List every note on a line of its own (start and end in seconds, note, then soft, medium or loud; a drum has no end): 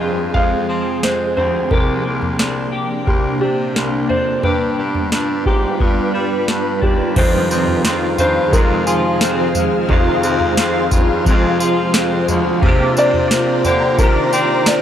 0.00 1.71 F2 medium
0.00 0.30 G2 medium
0.00 1.67 F3 medium
0.00 0.69 C4 soft
0.00 1.67 C4 medium
0.00 1.71 F4 medium
0.00 1.67 G#4 medium
0.00 0.37 D#5 medium
0.34 0.65 F2 medium
0.34 1.02 G#3 medium
0.34 1.05 F5 medium
0.34 kick medium
0.34 floor tom medium
0.69 0.99 F3 medium
0.69 1.37 C4 medium
1.03 1.33 F2 medium
1.03 1.78 G#3 medium
1.03 1.35 C5 medium
1.03 snare loud
1.37 1.67 D2 medium
1.37 2.08 C4 medium
1.37 1.72 C5 medium
1.37 floor tom medium
1.71 2.01 C2 medium
1.71 4.44 C3 medium
1.71 4.41 C3 medium
1.71 4.41 A#3 medium
1.71 7.13 D4 medium
1.71 2.72 G4 medium
1.71 3.11 A#4 medium
1.71 kick medium
1.71 floor tom medium
2.05 2.35 C2 medium
2.05 3.06 A#3 medium
2.22 floor tom medium
2.38 2.69 C2 medium
2.38 3.40 D4 medium
2.38 snare loud
2.72 4.44 G4 medium
3.07 3.37 C2 medium
3.07 3.74 A#3 medium
3.07 3.39 G4 medium
3.07 kick medium
3.07 floor tom medium
3.41 3.72 C3 medium
3.41 4.09 D4 medium
3.41 4.11 G4 medium
3.75 4.06 C2 medium
3.75 4.50 A#3 medium
3.75 snare loud
4.09 4.40 F2 medium
4.09 5.12 D4 medium
4.09 4.45 C5 medium
4.09 floor tom medium
4.43 4.74 G2 medium
4.43 7.14 G3 medium
4.43 7.14 F4 medium
4.43 5.45 G4 medium
4.43 5.49 B4 medium
4.43 7.14 B4 medium
4.43 floor tom medium
4.78 5.08 G2 medium
4.78 5.79 B3 soft
4.95 floor tom medium
5.12 5.42 G2 medium
5.12 6.13 D4 soft
5.12 snare medium
5.46 5.76 G#2 medium
5.46 5.81 G4 medium
5.46 7.24 G4 medium
5.46 kick medium
5.80 6.10 G2 medium
5.80 6.46 B3 medium
5.80 6.79 F4 medium
5.80 kick medium
5.80 floor tom medium
6.14 6.44 G3 medium
6.14 6.80 D4 medium
6.47 6.78 G2 medium
6.47 7.23 B3 medium
6.47 snare medium
6.82 7.12 D#2 medium
6.82 7.23 D4 medium
6.82 7.18 G4 medium
6.82 kick medium
6.82 floor tom medium
7.15 7.85 F2 medium
7.15 9.88 F2 medium
7.15 7.47 F2 loud
7.15 7.85 C3 medium
7.15 7.83 D#3 medium
7.15 7.85 G#3 medium
7.15 7.85 C4 medium
7.15 14.82 F4 medium
7.15 12.57 G#4 medium
7.15 14.82 C5 medium
7.15 8.18 C5 medium
7.15 12.57 F5 loud
7.15 kick medium
7.15 floor tom medium
7.15 crash medium
7.19 7.86 F4 medium
7.50 7.81 F2 loud
7.50 9.21 C4 medium
7.50 tambourine medium
7.68 floor tom medium
7.83 8.15 F2 medium
7.83 8.53 D#3 medium
7.83 8.56 C4 medium
7.83 snare loud
7.83 tambourine medium
7.87 8.54 F4 medium
8.18 8.49 G2 loud
8.18 8.86 F4 medium
8.18 8.54 C5 medium
8.18 floor tom medium
8.18 tambourine medium
8.51 9.87 F2 medium
8.51 8.83 F2 loud
8.51 9.88 C3 medium
8.51 9.89 D#3 medium
8.51 9.54 G#3 medium
8.51 8.88 A#4 medium
8.51 kick medium
8.51 tambourine medium
8.55 9.89 G#3 medium
8.55 9.91 C4 medium
8.55 9.91 F4 medium
8.86 9.17 F3 medium
8.86 10.90 F4 medium
8.86 9.51 G#4 medium
8.86 tambourine medium
9.21 9.51 F2 loud
9.21 10.23 C4 medium
9.21 snare loud
9.21 tambourine medium
9.55 10.57 G#3 medium
9.55 floor tom medium
9.55 tambourine medium
9.88 10.57 F2 medium
9.88 10.19 F2 medium
9.88 12.62 F2 medium
9.88 10.57 C3 medium
9.88 10.57 D#3 medium
9.88 10.58 G#3 medium
9.88 10.60 C4 medium
9.88 10.59 F4 medium
9.88 kick medium
9.88 floor tom medium
10.23 10.53 F2 loud
10.23 11.94 C4 medium
10.23 tambourine medium
10.40 floor tom medium
10.57 10.87 F2 loud
10.57 11.28 D#3 medium
10.57 11.30 C4 medium
10.57 snare loud
10.57 tambourine medium
10.61 11.28 F4 medium
10.91 11.22 G2 medium
10.91 11.58 F4 medium
10.91 kick medium
10.91 floor tom medium
10.91 tambourine medium
11.25 12.62 F2 medium
11.25 11.56 F2 loud
11.25 12.60 C3 medium
11.25 12.27 G#3 medium
11.25 kick medium
11.25 tambourine medium
11.29 12.64 G#3 medium
11.29 12.66 C4 medium
11.29 12.65 F4 medium
11.59 11.90 F3 medium
11.59 12.69 F4 medium
11.59 tambourine medium
11.94 12.24 F2 medium
11.94 12.96 C4 medium
11.94 snare loud
11.94 tambourine medium
12.28 12.58 D2 medium
12.28 12.69 G#3 medium
12.28 floor tom medium
12.28 tambourine medium
12.62 13.96 C3 medium
12.62 14.82 C3 medium
12.62 12.92 C3 loud
12.62 13.99 A#3 loud
12.62 14.82 D5 medium
12.62 14.82 A#5 loud
12.62 kick loud
12.62 floor tom medium
12.66 14.00 D4 medium
12.66 14.01 G4 medium
12.96 13.26 C3 loud
12.96 14.65 D4 medium
12.96 13.67 D5 loud
12.96 tambourine medium
13.14 floor tom medium
13.30 13.60 C3 medium
13.30 13.98 A#3 medium
13.30 snare loud
13.30 tambourine medium
13.65 13.95 D3 medium
13.65 14.32 G4 medium
13.65 14.00 C5 medium
13.65 floor tom medium
13.65 tambourine medium
13.97 14.82 C3 medium
13.97 14.28 C3 medium
13.97 14.82 D#3 medium
13.97 14.82 A#3 medium
13.97 14.69 A#4 medium
13.97 kick loud
13.97 tambourine medium
14.02 14.82 D4 medium
14.02 14.82 G4 medium
14.33 14.63 C4 medium
14.33 14.82 G4 medium
14.33 tambourine medium
14.66 14.82 C3 medium
14.66 14.82 D4 medium
14.66 14.82 D5 medium
14.66 snare loud
14.66 tambourine medium